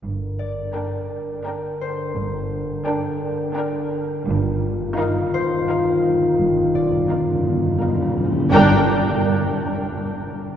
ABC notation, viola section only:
X:1
M:3/4
L:1/8
Q:1/4=85
K:Gm
V:1 name="Viola section"
z2 D2 D2 | z2 D2 D2 | z2 E2 E2 | z2 E2 E2 |
D z4 z |]